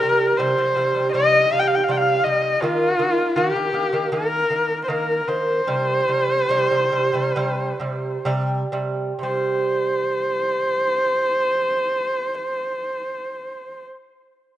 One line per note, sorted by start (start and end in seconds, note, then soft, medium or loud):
0.00 0.31 C3 medium
0.00 0.32 G3 medium
0.00 0.38 A#4 loud
0.36 0.54 C3 loud
0.36 0.54 G3 loud
0.36 1.11 C5 medium
0.58 0.73 C3 medium
0.58 0.73 G3 medium
0.76 0.91 C3 medium
0.76 0.92 G3 medium
0.94 1.09 C3 medium
0.94 1.10 G3 medium
1.12 1.43 C3 medium
1.12 1.44 G3 loud
1.12 1.54 D#5 loud
1.51 1.81 C3 medium
1.51 1.81 G3 medium
1.51 1.61 F5 loud
1.59 1.69 G5 loud
1.67 1.76 F5 medium
1.75 1.85 G5 medium
1.84 1.92 F5 medium
1.88 2.18 C3 medium
1.88 2.18 G3 loud
1.88 1.99 G5 medium
1.97 2.25 F5 loud
2.23 2.55 C3 medium
2.23 2.55 G3 medium
2.23 2.64 D#5 loud
2.62 2.92 D#3 loud
2.62 2.92 A#3 loud
2.62 3.38 F4 loud
2.99 3.29 D#3 medium
2.99 3.29 A#3 medium
3.36 3.51 D#3 loud
3.36 3.52 A#3 loud
3.36 4.14 G4 loud
3.55 3.70 D#3 medium
3.55 3.71 A#3 medium
3.73 3.89 D#3 medium
3.73 3.89 A#3 medium
3.93 4.08 D#3 medium
3.93 4.08 A#3 medium
4.12 4.42 D#3 medium
4.12 4.43 A#3 loud
4.12 4.82 A#4 loud
4.50 4.81 D#3 medium
4.50 4.81 A#3 medium
4.84 4.90 C5 medium
4.88 5.20 D#3 medium
4.88 5.21 A#3 loud
4.88 5.29 A#4 medium
5.28 5.60 D#3 medium
5.28 5.60 A#3 medium
5.28 8.26 C5 loud
5.67 6.00 C3 medium
5.67 6.01 G3 loud
6.08 6.42 C3 medium
6.08 6.42 G3 medium
6.49 6.67 C3 loud
6.49 6.67 G3 loud
6.71 6.88 C3 medium
6.71 6.89 G3 medium
6.92 7.10 C3 medium
6.92 7.10 G3 medium
7.13 7.31 C3 medium
7.13 7.32 G3 medium
7.36 7.72 C3 loud
7.36 7.72 G3 loud
7.80 8.17 C3 medium
7.80 8.17 G3 medium
8.25 8.63 C3 loud
8.25 8.64 G3 loud
8.72 9.11 C3 medium
8.72 9.12 G3 loud
9.19 13.81 C3 medium
9.19 13.85 C5 loud
9.23 13.85 G3 medium